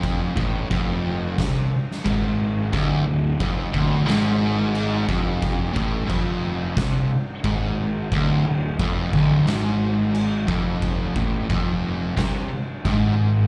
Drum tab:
CC |x---x---x---x---|x---x---x---x---|x---x---x---x---|x---x---x---x---|
SD |--------o--o----|--------o-------|--------o-------|--------o-------|
BD |o-o-o---o---o---|o---o-o-------o-|o-o-o---o---o---|o---o-o-------o-|

CC |x---x---x---x---|
SD |--------o-------|
BD |o-o-o---o---o---|